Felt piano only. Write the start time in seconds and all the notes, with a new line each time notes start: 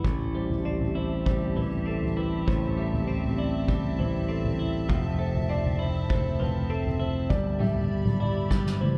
0.35 C5
0.65 D5
0.96 C5
1.26 C5
1.56 B4
1.87 A4
2.17 B4
2.47 C5
2.78 E5
3.38 D5
3.99 C5
4.29 A4
5.20 C5
5.50 D5
5.80 C5
6.10 C5
6.40 B4
6.70 A4
7.00 C5
7.29 D5
7.60 E5
8.20 D5
8.80 C5